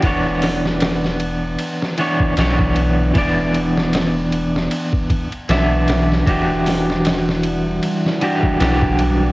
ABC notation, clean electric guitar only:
X:1
M:4/4
L:1/8
Q:"Swing 16ths" 1/4=77
K:Bm
V:1 name="Clean electric guitar"
[E,B,Dc]4- [E,B,Dc] [E,B,Dc] [E,B,Dc]2 | [E,B,Dd]4- [E,B,Dd] z [E,B,De]2 | [E,DFG]4- [E,DFG] [E,DFG] [E,DFG]2 |]